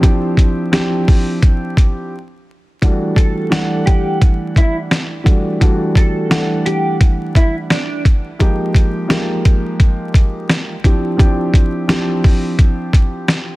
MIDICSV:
0, 0, Header, 1, 4, 480
1, 0, Start_track
1, 0, Tempo, 697674
1, 19, Time_signature, 4, 2, 24, 8
1, 9329, End_track
2, 0, Start_track
2, 0, Title_t, "Clean electric guitar"
2, 0, Program_c, 0, 27
2, 2179, Note_on_c, 0, 69, 76
2, 2632, Note_off_c, 0, 69, 0
2, 2654, Note_on_c, 0, 67, 72
2, 2872, Note_off_c, 0, 67, 0
2, 3150, Note_on_c, 0, 64, 87
2, 3274, Note_off_c, 0, 64, 0
2, 4111, Note_on_c, 0, 69, 70
2, 4558, Note_off_c, 0, 69, 0
2, 4580, Note_on_c, 0, 67, 76
2, 4796, Note_off_c, 0, 67, 0
2, 5066, Note_on_c, 0, 64, 64
2, 5192, Note_off_c, 0, 64, 0
2, 5308, Note_on_c, 0, 62, 75
2, 5520, Note_off_c, 0, 62, 0
2, 9329, End_track
3, 0, Start_track
3, 0, Title_t, "Grand piano"
3, 0, Program_c, 1, 0
3, 4, Note_on_c, 1, 53, 90
3, 8, Note_on_c, 1, 60, 87
3, 10, Note_on_c, 1, 62, 83
3, 14, Note_on_c, 1, 64, 80
3, 17, Note_on_c, 1, 67, 99
3, 461, Note_off_c, 1, 53, 0
3, 462, Note_off_c, 1, 60, 0
3, 464, Note_off_c, 1, 62, 0
3, 466, Note_off_c, 1, 64, 0
3, 467, Note_off_c, 1, 67, 0
3, 491, Note_on_c, 1, 53, 88
3, 495, Note_on_c, 1, 60, 92
3, 498, Note_on_c, 1, 62, 81
3, 502, Note_on_c, 1, 64, 80
3, 504, Note_on_c, 1, 67, 109
3, 1455, Note_off_c, 1, 53, 0
3, 1457, Note_off_c, 1, 60, 0
3, 1459, Note_off_c, 1, 62, 0
3, 1460, Note_off_c, 1, 64, 0
3, 1462, Note_off_c, 1, 67, 0
3, 1938, Note_on_c, 1, 52, 90
3, 1941, Note_on_c, 1, 55, 83
3, 1945, Note_on_c, 1, 57, 82
3, 1948, Note_on_c, 1, 62, 75
3, 1952, Note_on_c, 1, 66, 91
3, 2388, Note_off_c, 1, 52, 0
3, 2389, Note_off_c, 1, 55, 0
3, 2391, Note_off_c, 1, 57, 0
3, 2393, Note_off_c, 1, 62, 0
3, 2394, Note_off_c, 1, 66, 0
3, 2407, Note_on_c, 1, 52, 96
3, 2410, Note_on_c, 1, 55, 82
3, 2413, Note_on_c, 1, 57, 86
3, 2416, Note_on_c, 1, 62, 83
3, 2420, Note_on_c, 1, 78, 101
3, 3535, Note_off_c, 1, 52, 0
3, 3537, Note_off_c, 1, 55, 0
3, 3539, Note_off_c, 1, 57, 0
3, 3540, Note_off_c, 1, 62, 0
3, 3542, Note_off_c, 1, 78, 0
3, 3602, Note_on_c, 1, 52, 72
3, 3605, Note_on_c, 1, 55, 72
3, 3609, Note_on_c, 1, 57, 67
3, 3611, Note_on_c, 1, 62, 70
3, 3614, Note_on_c, 1, 66, 83
3, 3835, Note_off_c, 1, 52, 0
3, 3837, Note_off_c, 1, 55, 0
3, 3838, Note_off_c, 1, 57, 0
3, 3840, Note_off_c, 1, 62, 0
3, 3841, Note_off_c, 1, 66, 0
3, 3854, Note_on_c, 1, 52, 92
3, 3857, Note_on_c, 1, 55, 85
3, 3860, Note_on_c, 1, 57, 83
3, 3863, Note_on_c, 1, 62, 79
3, 3866, Note_on_c, 1, 66, 91
3, 4306, Note_off_c, 1, 52, 0
3, 4307, Note_off_c, 1, 55, 0
3, 4309, Note_off_c, 1, 57, 0
3, 4310, Note_off_c, 1, 62, 0
3, 4312, Note_off_c, 1, 66, 0
3, 4331, Note_on_c, 1, 52, 86
3, 4334, Note_on_c, 1, 55, 79
3, 4338, Note_on_c, 1, 57, 83
3, 4341, Note_on_c, 1, 62, 81
3, 4344, Note_on_c, 1, 78, 92
3, 5682, Note_off_c, 1, 52, 0
3, 5684, Note_off_c, 1, 55, 0
3, 5686, Note_off_c, 1, 57, 0
3, 5687, Note_off_c, 1, 62, 0
3, 5688, Note_off_c, 1, 78, 0
3, 5774, Note_on_c, 1, 53, 91
3, 5776, Note_on_c, 1, 56, 81
3, 5780, Note_on_c, 1, 58, 79
3, 5783, Note_on_c, 1, 63, 88
3, 5786, Note_on_c, 1, 67, 107
3, 6226, Note_off_c, 1, 53, 0
3, 6227, Note_off_c, 1, 56, 0
3, 6229, Note_off_c, 1, 58, 0
3, 6230, Note_off_c, 1, 63, 0
3, 6232, Note_off_c, 1, 67, 0
3, 6246, Note_on_c, 1, 53, 93
3, 6249, Note_on_c, 1, 56, 82
3, 6252, Note_on_c, 1, 58, 87
3, 6256, Note_on_c, 1, 63, 84
3, 6259, Note_on_c, 1, 67, 96
3, 7375, Note_off_c, 1, 53, 0
3, 7377, Note_off_c, 1, 56, 0
3, 7378, Note_off_c, 1, 58, 0
3, 7380, Note_off_c, 1, 63, 0
3, 7381, Note_off_c, 1, 67, 0
3, 7457, Note_on_c, 1, 53, 78
3, 7459, Note_on_c, 1, 60, 71
3, 7463, Note_on_c, 1, 62, 71
3, 7466, Note_on_c, 1, 64, 64
3, 7469, Note_on_c, 1, 67, 90
3, 7674, Note_off_c, 1, 53, 0
3, 7677, Note_off_c, 1, 60, 0
3, 7681, Note_off_c, 1, 62, 0
3, 7683, Note_off_c, 1, 64, 0
3, 7684, Note_on_c, 1, 53, 91
3, 7687, Note_off_c, 1, 67, 0
3, 7688, Note_on_c, 1, 60, 82
3, 7691, Note_on_c, 1, 62, 85
3, 7694, Note_on_c, 1, 64, 78
3, 7697, Note_on_c, 1, 67, 102
3, 8141, Note_off_c, 1, 53, 0
3, 8142, Note_off_c, 1, 60, 0
3, 8144, Note_off_c, 1, 62, 0
3, 8146, Note_off_c, 1, 64, 0
3, 8147, Note_off_c, 1, 67, 0
3, 8171, Note_on_c, 1, 53, 91
3, 8174, Note_on_c, 1, 60, 92
3, 8178, Note_on_c, 1, 62, 84
3, 8181, Note_on_c, 1, 64, 82
3, 8184, Note_on_c, 1, 67, 104
3, 9329, Note_off_c, 1, 53, 0
3, 9329, Note_off_c, 1, 60, 0
3, 9329, Note_off_c, 1, 62, 0
3, 9329, Note_off_c, 1, 64, 0
3, 9329, Note_off_c, 1, 67, 0
3, 9329, End_track
4, 0, Start_track
4, 0, Title_t, "Drums"
4, 21, Note_on_c, 9, 36, 105
4, 24, Note_on_c, 9, 42, 81
4, 90, Note_off_c, 9, 36, 0
4, 93, Note_off_c, 9, 42, 0
4, 256, Note_on_c, 9, 36, 91
4, 266, Note_on_c, 9, 42, 82
4, 325, Note_off_c, 9, 36, 0
4, 334, Note_off_c, 9, 42, 0
4, 501, Note_on_c, 9, 38, 113
4, 506, Note_on_c, 9, 42, 85
4, 570, Note_off_c, 9, 38, 0
4, 574, Note_off_c, 9, 42, 0
4, 744, Note_on_c, 9, 36, 93
4, 744, Note_on_c, 9, 46, 55
4, 812, Note_off_c, 9, 36, 0
4, 812, Note_off_c, 9, 46, 0
4, 980, Note_on_c, 9, 36, 107
4, 981, Note_on_c, 9, 42, 85
4, 1049, Note_off_c, 9, 36, 0
4, 1050, Note_off_c, 9, 42, 0
4, 1219, Note_on_c, 9, 36, 92
4, 1226, Note_on_c, 9, 42, 75
4, 1287, Note_off_c, 9, 36, 0
4, 1295, Note_off_c, 9, 42, 0
4, 1941, Note_on_c, 9, 36, 104
4, 1945, Note_on_c, 9, 42, 83
4, 2010, Note_off_c, 9, 36, 0
4, 2013, Note_off_c, 9, 42, 0
4, 2177, Note_on_c, 9, 36, 92
4, 2187, Note_on_c, 9, 42, 82
4, 2245, Note_off_c, 9, 36, 0
4, 2255, Note_off_c, 9, 42, 0
4, 2421, Note_on_c, 9, 38, 111
4, 2425, Note_on_c, 9, 42, 86
4, 2490, Note_off_c, 9, 38, 0
4, 2494, Note_off_c, 9, 42, 0
4, 2663, Note_on_c, 9, 36, 87
4, 2663, Note_on_c, 9, 42, 77
4, 2732, Note_off_c, 9, 36, 0
4, 2732, Note_off_c, 9, 42, 0
4, 2900, Note_on_c, 9, 36, 102
4, 2901, Note_on_c, 9, 42, 85
4, 2969, Note_off_c, 9, 36, 0
4, 2969, Note_off_c, 9, 42, 0
4, 3138, Note_on_c, 9, 36, 91
4, 3146, Note_on_c, 9, 42, 76
4, 3207, Note_off_c, 9, 36, 0
4, 3215, Note_off_c, 9, 42, 0
4, 3380, Note_on_c, 9, 38, 110
4, 3390, Note_on_c, 9, 42, 86
4, 3449, Note_off_c, 9, 38, 0
4, 3459, Note_off_c, 9, 42, 0
4, 3619, Note_on_c, 9, 36, 92
4, 3623, Note_on_c, 9, 42, 80
4, 3688, Note_off_c, 9, 36, 0
4, 3692, Note_off_c, 9, 42, 0
4, 3861, Note_on_c, 9, 36, 104
4, 3863, Note_on_c, 9, 42, 85
4, 3930, Note_off_c, 9, 36, 0
4, 3932, Note_off_c, 9, 42, 0
4, 4096, Note_on_c, 9, 36, 94
4, 4106, Note_on_c, 9, 42, 83
4, 4165, Note_off_c, 9, 36, 0
4, 4175, Note_off_c, 9, 42, 0
4, 4341, Note_on_c, 9, 38, 115
4, 4346, Note_on_c, 9, 42, 84
4, 4410, Note_off_c, 9, 38, 0
4, 4414, Note_off_c, 9, 42, 0
4, 4583, Note_on_c, 9, 42, 75
4, 4652, Note_off_c, 9, 42, 0
4, 4820, Note_on_c, 9, 36, 105
4, 4821, Note_on_c, 9, 42, 82
4, 4889, Note_off_c, 9, 36, 0
4, 4890, Note_off_c, 9, 42, 0
4, 5058, Note_on_c, 9, 36, 90
4, 5066, Note_on_c, 9, 42, 77
4, 5127, Note_off_c, 9, 36, 0
4, 5135, Note_off_c, 9, 42, 0
4, 5300, Note_on_c, 9, 38, 109
4, 5310, Note_on_c, 9, 42, 88
4, 5369, Note_off_c, 9, 38, 0
4, 5379, Note_off_c, 9, 42, 0
4, 5540, Note_on_c, 9, 36, 92
4, 5543, Note_on_c, 9, 42, 79
4, 5608, Note_off_c, 9, 36, 0
4, 5612, Note_off_c, 9, 42, 0
4, 5781, Note_on_c, 9, 36, 104
4, 5784, Note_on_c, 9, 42, 83
4, 5850, Note_off_c, 9, 36, 0
4, 5853, Note_off_c, 9, 42, 0
4, 6017, Note_on_c, 9, 36, 95
4, 6026, Note_on_c, 9, 42, 83
4, 6086, Note_off_c, 9, 36, 0
4, 6095, Note_off_c, 9, 42, 0
4, 6261, Note_on_c, 9, 38, 114
4, 6265, Note_on_c, 9, 42, 87
4, 6330, Note_off_c, 9, 38, 0
4, 6334, Note_off_c, 9, 42, 0
4, 6503, Note_on_c, 9, 42, 77
4, 6504, Note_on_c, 9, 36, 89
4, 6572, Note_off_c, 9, 36, 0
4, 6572, Note_off_c, 9, 42, 0
4, 6740, Note_on_c, 9, 36, 104
4, 6741, Note_on_c, 9, 42, 81
4, 6809, Note_off_c, 9, 36, 0
4, 6810, Note_off_c, 9, 42, 0
4, 6978, Note_on_c, 9, 36, 91
4, 6986, Note_on_c, 9, 42, 77
4, 7047, Note_off_c, 9, 36, 0
4, 7055, Note_off_c, 9, 42, 0
4, 7221, Note_on_c, 9, 38, 112
4, 7231, Note_on_c, 9, 42, 86
4, 7289, Note_off_c, 9, 38, 0
4, 7300, Note_off_c, 9, 42, 0
4, 7460, Note_on_c, 9, 36, 90
4, 7464, Note_on_c, 9, 42, 80
4, 7529, Note_off_c, 9, 36, 0
4, 7533, Note_off_c, 9, 42, 0
4, 7701, Note_on_c, 9, 36, 105
4, 7705, Note_on_c, 9, 42, 86
4, 7770, Note_off_c, 9, 36, 0
4, 7774, Note_off_c, 9, 42, 0
4, 7936, Note_on_c, 9, 36, 92
4, 7946, Note_on_c, 9, 42, 84
4, 8005, Note_off_c, 9, 36, 0
4, 8015, Note_off_c, 9, 42, 0
4, 8181, Note_on_c, 9, 38, 113
4, 8185, Note_on_c, 9, 42, 85
4, 8249, Note_off_c, 9, 38, 0
4, 8254, Note_off_c, 9, 42, 0
4, 8423, Note_on_c, 9, 36, 90
4, 8423, Note_on_c, 9, 46, 56
4, 8492, Note_off_c, 9, 36, 0
4, 8492, Note_off_c, 9, 46, 0
4, 8660, Note_on_c, 9, 36, 105
4, 8661, Note_on_c, 9, 42, 85
4, 8729, Note_off_c, 9, 36, 0
4, 8730, Note_off_c, 9, 42, 0
4, 8898, Note_on_c, 9, 36, 88
4, 8905, Note_on_c, 9, 42, 79
4, 8967, Note_off_c, 9, 36, 0
4, 8974, Note_off_c, 9, 42, 0
4, 9139, Note_on_c, 9, 38, 110
4, 9150, Note_on_c, 9, 42, 86
4, 9208, Note_off_c, 9, 38, 0
4, 9218, Note_off_c, 9, 42, 0
4, 9329, End_track
0, 0, End_of_file